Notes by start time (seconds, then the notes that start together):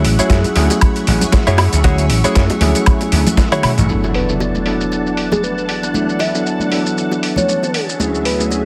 Already playing: F#3 A3 C#4 E4 G#4 E5 F#5 C#6
0.05 A1, open hi-hat
0.19 F#3 A3 C#4 E4 F#4 G#4 C#5, muted slap bass stroke, closed hi-hat, shaker
0.30 F#2, kick, snare, closed hi-hat, high bongo, shaker
0.44 closed hi-hat, high conga, shaker
0.55 D2 F#3 A3 C#4 E4 G#4, muted clean electric guitar stroke, open hi-hat
0.70 muted clean electric guitar stroke, closed hi-hat, high bongo, shaker
0.81 kick, closed hi-hat, high woodblock, shaker
0.96 closed hi-hat, shaker
1.07 A1, open hi-hat
1.21 muted clean electric guitar stroke, closed hi-hat, high bongo, high conga, low conga, shaker
1.32 muted clean electric guitar stroke, kick, snare, closed hi-hat, shaker
1.47 F#2 E4 F#4 G#4 C#5, closed hi-hat, shaker
1.58 open hi-hat, high bongo, high woodblock
1.73 D2, closed hi-hat, shaker
1.84 D2 F#3 A3 C#4 E4 F#4 G#4 C#5, kick, closed hi-hat, high conga, shaker
1.98 closed hi-hat, shaker
2.10 A1, open hi-hat, high bongo
2.24 F#3 A3 C#4 E4 F#4 G#4 C#5, muted slap bass stroke, closed hi-hat, shaker
2.35 F#2, kick, snare, closed hi-hat, shaker
2.50 closed hi-hat, high bongo, high conga, shaker
2.60 D2 F#3 A3 C#4 E4 G#4, muted clean electric guitar stroke, open hi-hat, low conga
2.75 muted clean electric guitar stroke, closed hi-hat, shaker
2.86 kick, closed hi-hat, high woodblock, shaker
3.01 closed hi-hat, high bongo, shaker
3.12 D2, open hi-hat
3.27 muted clean electric guitar stroke, closed hi-hat, high conga, low conga, shaker
3.37 muted clean electric guitar stroke, kick, snare, closed hi-hat, high bongo, shaker
3.52 E4 F#4 G#4 C#5, closed hi-hat, high tom, shaker
3.63 muted slap bass stroke, open hi-hat, mid tom, high woodblock
3.78 A1, closed hi-hat, mid tom, shaker
3.89 E3 F#3 B3 D4 E4 A4 F#5 A5, impact, high conga, shaker
4.04 high bongo, shaker
4.14 B4, open hi-hat
4.29 F#3 B3 D4 E4 A4, shaker
4.40 high bongo, shaker
4.55 high conga, shaker
4.66 F#3 B3 D4 E4 A4, open hi-hat
4.81 shaker
4.92 high bongo, shaker
5.07 shaker
5.17 open hi-hat
5.32 G#4, high bongo, high conga, low conga, shaker
5.43 B4, shaker
5.57 B4, shaker
5.69 open hi-hat
5.83 high bongo, shaker
5.94 F#3 B3 D4 E4 A4, high conga, shaker
6.09 shaker
6.19 E5, open hi-hat, high bongo
6.34 F#3 B3 D4 E4 A4, shaker
6.46 shaker
6.59 high conga, shaker
6.70 F#3 B3 D4 E4 A4, open hi-hat, high bongo
6.86 shaker
6.98 shaker
7.11 high bongo, shaker
7.23 open hi-hat
7.36 C#5, high conga, low conga, shaker
7.49 shaker
7.63 high bongo, shaker
7.74 D3 C#4 F#4 G#4 E5, open hi-hat
7.89 shaker
8.00 D2 F#3 A3 C#4 E4 G#4, high bongo, high conga, shaker
8.15 shaker
8.25 B4, open hi-hat
8.39 D2 F#3 A3 C#4 E4 G#4, shaker
8.51 high bongo, shaker